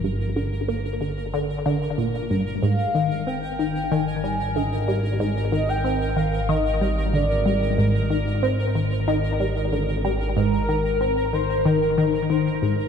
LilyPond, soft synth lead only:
\new Staff \with { instrumentName = "Soft synth lead" } { \time 4/4 \key aes \lydian \tempo 4 = 93 r1 | f''4 g''4 aes''4 ees''8. r16 | r8 ees''16 g''8. f''8 ees''4 d''8. r16 | r1 |
bes'4. c''8 bes'4 c''8. r16 | }